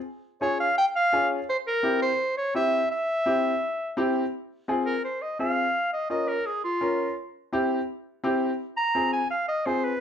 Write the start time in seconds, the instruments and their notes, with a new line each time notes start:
0.41 upright piano C#4 F4 G#4, clarinet C#5
0.60 clarinet F5
0.78 clarinet G5
0.96 clarinet F5
1.12 upright piano C#4 F4 G#4
1.49 clarinet C5
1.67 clarinet A#4
1.83 upright piano C4 E4 G4
2.02 clarinet C5
2.38 clarinet C#5
2.54 upright piano C4 E4 G4, clarinet E5
2.91 clarinet E5
3.26 upright piano C4 E4 G4
3.97 upright piano C4 E4 G4
4.68 upright piano C4 F4 G#4
4.86 clarinet A#4
5.04 clarinet C5
5.22 clarinet D#5
5.39 upright piano C4 F4 G#4, clarinet F5
5.93 clarinet D#5
6.10 upright piano C#4 F4 A#4, clarinet D#5
6.28 clarinet A#4
6.46 clarinet G#4
6.64 clarinet F4
6.81 upright piano C#4 F4 A#4
7.53 upright piano C4 E4 G4
8.24 upright piano C4 E4 G4
8.77 clarinet A#5
8.95 upright piano C4 F4 G#4
9.13 clarinet G#5
9.31 clarinet F5
9.48 clarinet D#5
9.66 upright piano C4 F4 G#4, clarinet C5
9.84 clarinet B4